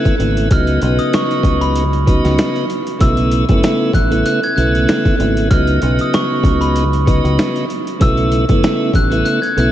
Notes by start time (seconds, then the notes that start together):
Already playing: C#3 A3 B3 E4
0.05 kick, closed hi-hat
0.17 G#1 C#3 A3 B3 E4, closed hi-hat
0.37 closed hi-hat
0.50 C#2 C#3 F#3 B3 D#4 F6, kick, closed hi-hat
0.67 closed hi-hat
0.81 B1 C#3 F#3 B3 D#4, closed hi-hat
0.99 D#6, closed hi-hat
1.13 C#6, snare, closed hi-hat
1.31 closed hi-hat
1.43 C#2, kick, closed hi-hat
1.61 B5, closed hi-hat
1.76 closed hi-hat
1.93 closed hi-hat
2.06 C#3 F#3 B3 D#4, kick, closed hi-hat
2.25 C#2, snare, closed hi-hat
2.39 snare, closed hi-hat
2.56 closed hi-hat
2.70 closed hi-hat
2.87 closed hi-hat
2.99 B1 C#3 A3 B3 E4 E6, kick, closed hi-hat
3.17 closed hi-hat
3.32 closed hi-hat
3.49 F#1 C#3 A3 B3 E4, kick, closed hi-hat
3.63 snare, closed hi-hat
3.93 A1 F#6, kick, closed hi-hat
4.10 C#3 A3 B3 E4, closed hi-hat
4.26 F#6, closed hi-hat
4.43 G#6, closed hi-hat
4.56 B1 C#3 A3 B3 E4 F#6, closed hi-hat
4.75 closed hi-hat
4.89 snare, closed hi-hat
5.05 kick, closed hi-hat
5.18 G#1 C#3 A3 B3 E4, closed hi-hat
5.37 closed hi-hat
5.50 C#2 C#3 F#3 B3 D#4 F6, kick, closed hi-hat
5.67 closed hi-hat
5.82 B1 C#3 F#3 B3 D#4, closed hi-hat
5.99 D#6, closed hi-hat
6.14 C#6, snare, closed hi-hat
6.43 C#2, kick, closed hi-hat
6.61 B5, closed hi-hat
6.76 closed hi-hat
6.93 closed hi-hat
7.05 C#3 F#3 B3 D#4, kick, closed hi-hat
7.24 C#2, closed hi-hat
7.39 snare, closed hi-hat
7.56 closed hi-hat
7.70 closed hi-hat
7.87 closed hi-hat
7.99 B1 C#3 A3 B3 E4 E6, kick, closed hi-hat
8.17 closed hi-hat
8.32 closed hi-hat
8.49 F#1 C#3 A3 B3 E4, kick, closed hi-hat
8.64 snare, closed hi-hat
8.94 A1 F#6, kick, closed hi-hat
9.10 C#3 A3 B3 E4, closed hi-hat
9.25 F#6, closed hi-hat
9.42 G#6, closed hi-hat
9.56 B1 C#3 A3 B3 E4 F#6, closed hi-hat